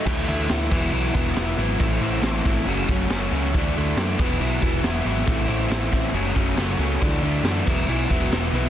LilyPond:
<<
  \new Staff \with { instrumentName = "Overdriven electric guitar" } { \clef bass \time 4/4 \key d \lydian \tempo 4 = 138 <d e a e'>8 <d e a e'>8 <d e a e'>8 <e fis b e'>8 <e fis b e'>8 <e fis b e'>8 <e fis b e'>8 <e fis b e'>8 | <a, e a c' e'>8 <a, e a c' e'>8 <a, e a c' e'>8 <a, e a c' e'>8 <fis, cis fis a cis'>8 <fis, cis fis a cis'>8 <fis, cis fis a cis'>8 <fis, cis fis a cis'>8 | <d e a d'>8 <d e a d'>8 <d e a d'>8 <e fis b e'>8 <e fis b e'>8 <e fis b e'>8 <e fis b e'>8 <e fis b e'>8 | <a, e a c' e'>8 <a, e a c' e'>8 <a, e a c' e'>8 <a, e a c' e'>8 <fis, cis fis a cis'>8 <fis, cis fis a cis'>8 <fis, cis fis a cis'>8 <fis, cis fis a cis'>8 |
<d e a d'>8 <d e a d'>8 <d e a d'>8 <e fis b e'>8 <e fis b e'>8 <e fis b e'>8 <e fis b e'>8 <e fis b e'>8 | }
  \new Staff \with { instrumentName = "Picked electric bass" } { \clef bass \time 4/4 \key d \lydian d,8 d,8 d,8 e,,8 b,,8 e,,8 e,,8 gis,,8 | a,,8 a,,8 a,,8 gis,,8 fis,,8 fis,,8 fis,,8 cis,8 | d,8 d,8 fis,8 e,,8 b,,8 e,,8 e,,8 gis,,8 | a,,8 a,,8 a,,8 a,,8 fis,,8 fis,,8 fis,,8 cis,8 |
d,8 d,8 fis,8 e,,8 b,,8 e,,8 e,,8 b,,8 | }
  \new DrumStaff \with { instrumentName = "Drums" } \drummode { \time 4/4 <cymc bd>4 <cymc sn>8 <cymc bd>8 cymc8 bd8 <cymc sn>4 | <cymc bd>4 <cymc sn>8 bd8 cymc8 bd8 <cymc sn>4 | <cymc bd>4 <cymc sn>8 <cymc bd>8 cymc8 bd8 <cymc sn>4 | <cymc bd>4 <cymc sn>8 bd8 cymc8 bd8 <cymc sn>4 |
<cymc bd>4 <cymc sn>8 <cymc bd>8 cymc8 bd8 <cymc sn>4 | }
>>